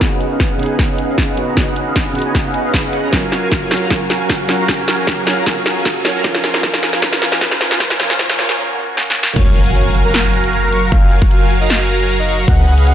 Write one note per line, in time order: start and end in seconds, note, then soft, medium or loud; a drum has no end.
0.00 1.55 C#2 medium
0.00 0.56 C#3 medium
0.00 0.57 B3 medium
0.00 0.28 C#4 medium
0.00 0.58 D#4 medium
0.00 0.58 F#4 medium
0.00 kick loud
0.00 snare medium
0.00 closed hi-hat medium
0.00 riser medium
0.20 closed hi-hat medium
0.31 0.48 C#4 medium
0.31 0.48 G#4 medium
0.31 0.48 B4 medium
0.31 0.48 D#5 medium
0.31 0.48 F5 medium
0.40 kick loud
0.40 snare medium
0.40 closed hi-hat medium
0.50 0.67 C#4 medium
0.50 0.67 G#4 medium
0.50 0.67 B4 medium
0.50 0.67 D#5 medium
0.50 0.67 F#5 medium
0.57 1.34 C#3 medium
0.57 1.35 B3 medium
0.57 1.36 D#4 medium
0.57 closed hi-hat soft
0.61 1.36 G#4 medium
0.61 closed hi-hat medium
0.66 0.77 C#4 medium
0.66 0.77 G#4 medium
0.66 0.77 B4 medium
0.66 0.77 D#5 medium
0.66 0.77 G#5 loud
0.66 closed hi-hat medium
0.79 0.88 G#4 medium
0.79 0.88 B4 medium
0.79 0.88 D#5 medium
0.79 kick loud
0.79 snare medium
0.79 closed hi-hat medium
0.89 1.06 C#4 medium
0.89 1.06 G#4 medium
0.89 1.06 B4 medium
0.89 1.06 D#5 medium
0.89 1.06 F#5 medium
0.98 closed hi-hat medium
1.09 1.26 C#4 medium
1.09 1.26 G#4 medium
1.09 1.26 B4 medium
1.09 1.26 D#5 medium
1.09 1.26 F5 medium
1.18 kick loud
1.18 snare medium
1.18 closed hi-hat medium
1.28 1.45 C#4 medium
1.28 1.45 G#4 medium
1.28 1.45 B4 medium
1.28 1.45 D#5 medium
1.28 1.45 F#5 medium
1.36 1.53 C#3 medium
1.36 1.54 B3 medium
1.36 1.55 D#4 medium
1.36 1.55 F#4 medium
1.36 closed hi-hat medium
1.48 1.55 C#4 medium
1.48 1.55 G#4 medium
1.48 1.55 B4 medium
1.48 1.55 D#5 medium
1.48 1.55 A#5 medium
1.55 2.12 C#3 medium
1.55 2.13 B3 medium
1.55 1.84 C#4 medium
1.55 2.14 D#4 medium
1.55 2.14 F#4 medium
1.55 1.84 D#5 medium
1.55 kick loud
1.55 snare medium
1.55 closed hi-hat medium
1.76 closed hi-hat medium
1.87 2.04 C#4 medium
1.87 2.04 G#4 medium
1.87 2.04 B4 medium
1.87 2.04 D#5 medium
1.87 2.04 F5 medium
1.96 kick loud
1.96 snare medium
1.96 closed hi-hat medium
2.06 2.23 C#4 medium
2.06 2.23 G#4 medium
2.06 2.23 B4 medium
2.06 2.23 D#5 medium
2.06 2.23 F#5 medium
2.13 3.09 C#3 medium
2.13 3.10 B3 medium
2.13 3.11 D#4 medium
2.13 closed hi-hat soft
2.17 3.12 F#4 medium
2.17 closed hi-hat medium
2.22 2.33 C#4 loud
2.22 2.33 G#4 medium
2.22 2.33 B4 medium
2.22 2.33 D#5 medium
2.22 2.33 G#5 loud
2.22 closed hi-hat medium
2.35 kick loud
2.35 snare medium
2.35 closed hi-hat medium
2.45 2.62 C#4 medium
2.45 2.62 G#4 medium
2.45 2.62 B4 medium
2.45 2.62 D#5 medium
2.45 2.62 F#5 medium
2.54 closed hi-hat medium
2.65 2.82 C#4 medium
2.65 2.82 G#4 medium
2.65 2.82 B4 medium
2.65 2.82 D#5 medium
2.65 2.82 F5 medium
2.74 kick medium
2.74 snare medium
2.74 closed hi-hat medium
2.84 3.01 C#4 medium
2.84 3.01 G#4 medium
2.84 3.01 B4 medium
2.84 3.01 D#5 medium
2.84 3.01 F#5 loud
2.93 closed hi-hat medium
3.03 3.11 C#4 medium
3.03 3.11 G#4 medium
3.03 3.11 B4 medium
3.03 3.11 D#5 medium
3.03 3.11 A#5 medium
3.11 3.67 F#3 medium
3.11 3.40 F#3 medium
3.11 3.69 C#4 medium
3.11 3.69 F4 medium
3.11 3.40 F#4 medium
3.11 3.40 A#4 medium
3.11 3.40 F5 medium
3.11 3.40 G#5 medium
3.11 kick loud
3.11 snare medium
3.11 closed hi-hat medium
3.15 3.70 A#4 medium
3.32 snare medium
3.32 closed hi-hat medium
3.42 3.60 F#3 medium
3.42 3.60 F#4 medium
3.42 3.60 A#4 medium
3.42 3.60 F5 medium
3.42 3.60 G#5 medium
3.52 kick loud
3.52 snare medium
3.52 closed hi-hat medium
3.62 3.79 F#3 medium
3.62 3.79 F#4 medium
3.62 3.79 A#4 medium
3.62 3.79 F5 medium
3.62 3.79 G#5 medium
3.69 3.87 F#3 medium
3.69 3.88 C#4 medium
3.69 3.89 F4 medium
3.69 snare medium
3.69 closed hi-hat soft
3.73 3.90 C#5 medium
3.73 closed hi-hat medium
3.78 3.89 F#3 medium
3.78 3.89 F#4 medium
3.78 3.89 A#4 medium
3.78 3.88 F5 medium
3.78 3.89 A#5 loud
3.78 closed hi-hat medium
3.89 4.46 F#3 medium
3.89 4.18 F#3 medium
3.89 4.47 C#4 medium
3.89 4.47 F4 medium
3.89 4.18 F#4 medium
3.89 4.18 A#4 medium
3.89 4.18 G#5 medium
3.89 kick loud
3.89 snare medium
3.89 closed hi-hat medium
3.93 4.48 A#4 medium
4.10 snare medium
4.10 closed hi-hat medium
4.20 4.37 F#3 medium
4.20 4.37 F#4 medium
4.20 4.37 A#4 medium
4.20 4.37 F5 medium
4.20 4.37 G#5 medium
4.29 kick loud
4.29 snare medium
4.29 closed hi-hat medium
4.40 4.57 F#3 medium
4.40 4.57 F#4 medium
4.40 4.57 A#4 medium
4.40 4.57 F5 medium
4.40 4.57 G#5 medium
4.47 4.65 F#3 medium
4.47 4.66 C#4 medium
4.47 4.67 F4 medium
4.47 4.68 C#5 medium
4.47 snare medium
4.47 closed hi-hat medium
4.59 4.66 F#3 medium
4.59 4.66 F#4 medium
4.59 4.66 A#4 medium
4.59 4.66 F5 medium
4.59 4.66 A#5 loud
4.66 5.23 F#3 medium
4.66 5.24 C#4 medium
4.66 5.25 F4 medium
4.66 4.96 F#4 medium
4.66 4.96 A#4 medium
4.66 4.96 F5 medium
4.66 kick loud
4.66 snare medium
4.66 closed hi-hat medium
4.70 5.26 A#4 medium
4.88 snare medium
4.88 closed hi-hat medium
4.98 5.15 F#3 medium
4.98 5.15 F#4 medium
4.98 5.15 A#4 medium
4.98 5.15 F5 medium
4.98 5.15 G#5 medium
5.07 kick loud
5.07 snare medium
5.07 closed hi-hat medium
5.18 5.35 F#3 medium
5.18 5.35 F#4 medium
5.18 5.35 A#4 medium
5.18 5.35 F5 medium
5.18 5.35 G#5 medium
5.25 5.43 F#3 medium
5.25 5.44 C#4 medium
5.25 5.45 F4 medium
5.25 snare medium
5.25 closed hi-hat soft
5.29 5.46 C#5 medium
5.29 closed hi-hat medium
5.33 5.44 A#5 loud
5.33 closed hi-hat medium
5.37 5.44 F#3 medium
5.37 5.44 F#4 medium
5.37 5.44 A#4 medium
5.37 5.44 F5 medium
5.44 6.01 F#3 medium
5.44 5.74 F#3 medium
5.44 6.02 C#4 medium
5.44 6.03 F4 medium
5.44 5.74 F#4 medium
5.44 5.74 A#4 medium
5.44 5.74 F5 medium
5.44 kick loud
5.44 snare medium
5.44 closed hi-hat medium
5.48 6.04 A#4 loud
5.66 snare medium
5.66 closed hi-hat medium
5.76 5.93 F#3 medium
5.76 5.93 F#4 medium
5.76 5.93 A#4 medium
5.76 5.93 F5 medium
5.76 5.93 G#5 medium
5.85 kick loud
5.85 snare medium
5.85 closed hi-hat medium
5.96 6.13 F#3 medium
5.96 6.13 F#4 medium
5.96 6.13 A#4 medium
5.96 6.13 F5 medium
5.96 6.13 G#5 medium
6.03 6.22 F#3 medium
6.03 6.22 C#4 medium
6.03 6.23 F4 medium
6.03 6.24 C#5 medium
6.03 snare medium
6.03 closed hi-hat medium
6.15 6.22 F#3 medium
6.15 6.22 F#4 medium
6.15 6.22 A#4 medium
6.15 6.22 F5 medium
6.15 6.22 A#5 loud
6.22 6.60 F3 medium
6.22 6.52 F3 medium
6.22 6.61 C#4 medium
6.22 6.52 F4 medium
6.22 6.62 F4 medium
6.22 6.52 A#4 medium
6.22 6.52 F5 medium
6.22 kick loud
6.22 snare medium
6.22 closed hi-hat medium
6.26 6.63 A#4 medium
6.35 snare medium
6.44 snare loud
6.44 closed hi-hat medium
6.54 6.62 F3 medium
6.54 6.62 F4 medium
6.54 6.62 A#4 medium
6.54 6.62 F5 medium
6.54 6.62 G#5 medium
6.54 snare medium
6.61 6.99 F3 medium
6.61 6.91 F3 medium
6.61 7.00 C#4 medium
6.61 6.91 F4 medium
6.61 7.01 F4 medium
6.61 7.02 A#4 loud
6.61 6.91 F5 medium
6.61 kick loud
6.61 snare medium
6.61 closed hi-hat medium
6.74 snare medium
6.83 snare loud
6.83 closed hi-hat soft
6.86 closed hi-hat medium
6.89 7.01 F3 medium
6.89 7.01 F4 medium
6.89 7.01 A#4 medium
6.89 7.01 F5 medium
6.89 7.01 G#5 medium
6.89 snare medium
6.89 closed hi-hat medium
7.00 7.38 F3 medium
7.00 7.39 C#4 medium
7.00 7.40 F4 medium
7.00 kick loud
7.00 snare loud
7.00 closed hi-hat medium
7.04 7.41 A#4 loud
7.13 snare medium
7.22 snare medium
7.22 closed hi-hat medium
7.32 7.40 F3 medium
7.32 7.40 F4 medium
7.32 7.40 A#4 medium
7.32 7.40 F5 medium
7.32 7.40 G#5 medium
7.32 snare medium
7.39 7.77 F3 medium
7.39 7.69 F3 medium
7.39 7.78 C#4 medium
7.39 7.79 F4 medium
7.39 7.69 A#4 medium
7.39 kick loud
7.39 snare loud
7.39 closed hi-hat medium
7.43 7.80 A#4 loud
7.51 snare medium
7.61 snare loud
7.61 closed hi-hat medium
7.71 7.79 F3 medium
7.71 7.79 F4 medium
7.71 7.79 A#4 medium
7.71 7.79 F5 medium
7.71 7.79 G#5 medium
7.71 snare medium
7.78 7.96 F3 medium
7.78 7.98 F3 medium
7.78 7.97 C#4 medium
7.78 7.98 F4 medium
7.78 7.99 F4 medium
7.78 7.98 A#4 medium
7.78 7.98 F5 medium
7.78 kick loud
7.78 snare loud
7.78 closed hi-hat medium
7.82 7.99 A#4 medium
7.90 snare medium
7.98 8.16 F3 medium
7.98 8.18 F3 medium
7.98 8.17 C#4 medium
7.98 8.18 F4 medium
7.98 8.18 A#4 medium
7.98 8.18 F5 medium
7.98 8.18 G#5 medium
7.98 snare loud
7.98 closed hi-hat medium
8.02 8.19 A#4 loud
8.10 snare medium
8.17 8.35 F3 medium
8.17 8.37 F3 medium
8.17 8.36 C#4 medium
8.17 8.37 F4 medium
8.17 8.38 F4 medium
8.17 8.38 A#4 loud
8.17 kick loud
8.17 snare loud
8.17 closed hi-hat medium
8.30 snare loud
8.37 8.55 F3 medium
8.37 8.57 F3 medium
8.37 8.56 C#4 medium
8.37 8.57 F4 medium
8.37 8.57 A#4 medium
8.37 8.57 F5 medium
8.37 8.57 G#5 medium
8.37 snare loud
8.37 closed hi-hat medium
8.41 8.58 A#4 loud
8.41 closed hi-hat medium
8.45 snare medium
8.45 closed hi-hat medium
8.56 8.74 F3 medium
8.56 8.75 C#4 medium
8.56 8.76 F4 medium
8.56 8.77 A#4 loud
8.56 swell medium
8.75 8.94 F3 medium
8.75 8.95 C#4 medium
8.75 8.96 F4 medium
8.79 8.97 A#4 loud
8.95 9.13 F3 medium
8.95 9.14 C#4 medium
8.95 9.15 F4 medium
8.95 9.16 A#4 loud
8.95 snare medium
9.10 snare medium
9.15 9.34 F3 medium
9.15 9.34 C#4 medium
9.15 9.35 F4 medium
9.15 9.36 A#4 loud
9.23 snare loud
9.36 10.90 F#1 medium
9.36 9.63 F#3 medium
9.36 9.63 F#4 medium
9.36 9.63 A#4 medium
9.36 9.62 C#5 loud
9.36 9.63 F5 medium
9.36 9.63 G#5 medium
9.36 kick loud
9.36 closed hi-hat medium
9.36 crash loud
9.36 impact medium
9.56 closed hi-hat medium
9.66 9.83 F#3 medium
9.66 9.83 F#4 medium
9.66 9.83 A#4 medium
9.66 9.83 F5 medium
9.66 9.83 G#5 medium
9.66 closed hi-hat medium
9.75 9.95 C#5 loud
9.75 closed hi-hat medium
9.85 10.02 F#3 medium
9.85 10.02 F#4 medium
9.85 10.02 A#4 medium
9.85 10.02 F5 medium
9.85 10.02 G#5 medium
9.95 closed hi-hat medium
10.05 10.12 F#3 loud
10.05 10.12 F#4 medium
10.05 10.12 A#4 medium
10.05 10.24 A#4 medium
10.05 10.12 F5 medium
10.05 10.12 A#5 loud
10.14 10.23 F#3 medium
10.14 10.23 F#4 medium
10.14 10.23 A#4 medium
10.14 10.23 F5 medium
10.14 10.23 G#5 loud
10.14 snare loud
10.14 closed hi-hat medium
10.24 10.32 F#3 medium
10.24 10.32 F#4 medium
10.24 10.32 A#4 medium
10.24 10.32 F5 medium
10.24 10.32 G#5 medium
10.34 10.42 F#3 medium
10.34 10.42 F#4 medium
10.34 10.42 A#4 medium
10.34 10.42 F5 medium
10.34 10.42 A#5 loud
10.34 closed hi-hat medium
10.44 10.51 F#3 medium
10.44 10.51 F#4 medium
10.44 10.51 A#4 medium
10.44 10.51 F5 medium
10.44 10.51 G#5 medium
10.44 closed hi-hat medium
10.53 10.70 F#3 medium
10.53 10.70 F#4 medium
10.53 10.70 A#4 medium
10.53 10.70 F5 medium
10.53 10.70 A#5 loud
10.53 closed hi-hat medium
10.63 10.83 A#4 loud
10.73 10.80 F#3 medium
10.73 10.80 F#4 medium
10.73 10.80 A#4 medium
10.73 10.80 F5 medium
10.73 10.80 C#6 loud
10.73 closed hi-hat medium
10.83 10.91 F#3 medium
10.83 10.91 F#4 medium
10.83 10.91 A#4 medium
10.83 10.91 F5 medium
10.83 10.91 A#5 medium
10.92 12.46 F#1 medium
10.92 11.19 F#3 medium
10.92 11.19 F#4 medium
10.92 11.19 A#4 medium
10.92 11.18 F5 loud
10.92 11.19 G#5 medium
10.92 kick loud
10.92 closed hi-hat medium
11.12 closed hi-hat medium
11.22 11.39 F#3 medium
11.22 11.39 F#4 medium
11.22 kick loud
11.22 closed hi-hat medium
11.31 11.50 F5 loud
11.31 closed hi-hat medium
11.41 11.58 F#3 medium
11.41 11.58 F#4 medium
11.41 11.58 A#4 medium
11.41 11.58 F5 medium
11.41 11.58 G#5 medium
11.50 closed hi-hat medium
11.61 11.68 F#3 loud
11.61 11.68 F#4 medium
11.61 11.68 A#4 medium
11.61 11.80 D#5 medium
11.61 11.68 F5 medium
11.61 11.68 A#5 loud
11.70 11.79 F#3 medium
11.70 11.79 F#4 medium
11.70 11.79 A#4 medium
11.70 11.79 F5 medium
11.70 11.79 G#5 medium
11.70 snare loud
11.70 closed hi-hat medium
11.80 11.88 F#3 medium
11.80 11.88 F#4 medium
11.80 11.88 A#4 medium
11.80 11.88 F5 medium
11.80 11.88 G#5 medium
11.89 11.98 F#3 medium
11.89 11.98 F#4 medium
11.89 11.98 A#4 medium
11.89 11.98 F5 medium
11.89 11.98 A#5 loud
11.89 closed hi-hat medium
12.00 12.07 F#3 medium
12.00 12.07 F#4 medium
12.00 12.07 A#4 medium
12.00 12.07 F5 medium
12.00 12.07 G#5 loud
12.00 closed hi-hat medium
12.09 12.26 F#3 loud
12.09 12.26 F#4 medium
12.09 12.26 A#4 medium
12.09 12.26 F5 medium
12.09 12.26 A#5 loud
12.09 closed hi-hat medium
12.19 12.39 D#5 loud
12.28 12.36 F#3 medium
12.28 12.36 F#4 medium
12.28 12.36 A#4 medium
12.28 12.36 F5 medium
12.28 12.36 C#6 loud
12.28 closed hi-hat medium
12.39 12.46 F#3 medium
12.39 12.46 F#4 medium
12.39 12.46 A#4 medium
12.39 12.46 F5 medium
12.39 12.46 A#5 loud
12.48 12.94 C#2 medium
12.48 12.75 C#4 medium
12.48 12.75 G#4 medium
12.48 12.75 B4 medium
12.48 12.75 D#5 medium
12.48 12.75 F#5 medium
12.48 12.74 F#5 loud
12.48 kick loud
12.48 closed hi-hat medium
12.67 closed hi-hat medium
12.78 12.94 C#4 medium
12.78 12.94 G#4 medium
12.78 12.94 B4 medium
12.78 12.94 D#5 medium
12.78 12.94 F5 medium
12.78 closed hi-hat medium
12.87 12.94 F#5 medium
12.87 closed hi-hat medium